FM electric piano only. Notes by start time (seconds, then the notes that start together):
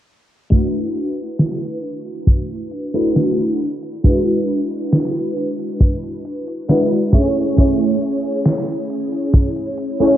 0.50 A3 D4 E4 F#4 B4
2.94 A3 D4 E4 F#4 B4
4.04 G#3 D4 E4 F#4 B4
6.69 G#3 D4 E4 F#4 B4
7.13 A3 C#4 E4 G#4 C#5
7.56 A3 C#4 E4 G#4 C#5
10.00 A3 C#4 E4 G#4 C#5